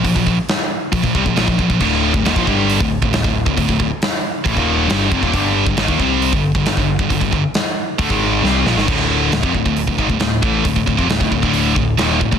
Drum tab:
CC |----------------|x---------------|----------------|----------------|
HH |o---o---o---o---|----o---o---o---|o---o---o---o---|o---o---o---o---|
SD |----o-------o---|----o-------o---|----o-------o---|----o-------o---|
BD |ooo-----oooo-ooo|o--o-oo--o-o-o-o|ooo-----oo----oo|o--o-oo--o-o-o-o|

CC |----------------|x---------------|----------------|
HH |o---o---o-------|----o---o---o---|o---o---o---o---|
SD |----o-------o-oo|----o-------o---|----o-------o---|
BD |ooo-----oo------|o----ooo-ooo--o-|oooo-ooo--o---oo|